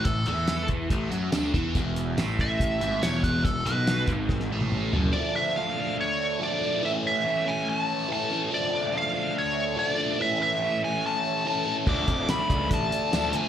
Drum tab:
CC |----------------|----------------|----------------|----------------|
HH |x-x-x-x-x-x-x-x-|x-x-x-x-x-x-x-x-|x-x-x-x---------|----------------|
TB |----x-------x---|----x-------x---|----x-----------|----------------|
SD |----o-------o---|----o-------o---|----o---oo------|----------------|
T1 |----------------|----------------|-----------o----|----------------|
T2 |----------------|----------------|------------o---|----------------|
FT |----------------|----------------|--------------oo|----------------|
BD |o-----o-o-----o-|o-----o-o-----o-|o-----o-o-------|----------------|

CC |----------------|----------------|----------------|x---------------|
HH |----------------|----------------|----------------|--x-x-x-x-x-x-x-|
TB |----------------|----------------|----------------|----x-------x---|
SD |----------------|----------------|----------------|----o-------o---|
T1 |----------------|----------------|----------------|----------------|
T2 |----------------|----------------|----------------|----------------|
FT |----------------|----------------|----------------|----------------|
BD |----------------|----------------|----------------|o-o---o-o-------|